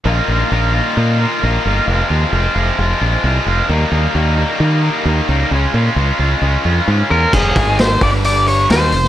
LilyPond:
<<
  \new Staff \with { instrumentName = "Lead electric guitar" } { \time 4/4 \key bes \dorian \tempo 4 = 132 r1 | r1 | r1 | r2. r8 bes'8 |
aes'4 c''8 d''8 d''8 des''8 c''4 | }
  \new Staff \with { instrumentName = "Distorted electric guitar" } { \time 4/4 \key bes \dorian <bes, ees bes ees' f'>8 <bes ees' f'>8 <ees bes ees' f'>8 <bes, ees bes ees' f'>8 <ees bes ees' f'>8 <bes, ees bes ees' f'>8 <ees bes ees' f'>8 <bes ees' f'>8 | <f, c f aes c' f'>8 <f aes c' f'>8 <f aes c' f'>8 <f, c f aes c' f'>8 <f aes c' f'>8 <f, c f aes c' f'>8 <f aes c' f'>8 <f aes c' f'>8 | <ees g bes ees'>8 <g bes ees'>8 <ees g bes ees'>8 <ees g bes ees'>8 <ees g bes ees'>8 <ees g bes ees'>8 <ees g bes ees'>8 <g bes ees'>8 | <des aes des' f'>8 <aes des' f'>8 <des aes des' f'>8 <des aes des' f'>8 <des aes des' f'>8 <des aes des' f'>8 <des aes des' f'>8 <aes des' f'>8 |
<f, c f>8 <aes, ees aes>4 <g, d g>4. <ees bes ees'>8 <f, c>8 | }
  \new Staff \with { instrumentName = "Fingered electric bass" } { \clef bass \time 4/4 \key bes \dorian bes,,8 bes,,8 bes,,4 bes,4 bes,,8 g,,8 | f,,8 ees,8 f,,8 f,,8 f,,8 bes,,8 c,8 f,,8 | ees,8 ees,8 ees,4 ees4 ees,8 des,8 | des,8 bes,8 des,8 des,8 des,8 f,8 aes,8 e,8 |
f,,8 aes,,4 g,,4. ees,8 f,,8 | }
  \new DrumStaff \with { instrumentName = "Drums" } \drummode { \time 4/4 r4 r4 r4 r4 | r4 r4 r4 r4 | r4 r4 r4 r4 | r4 r4 r4 r4 |
<cymc bd>8 <hho bd>8 <hho sn>8 <hho bd>8 hho8 hho8 <hho sn>8 hho16 sn16 | }
>>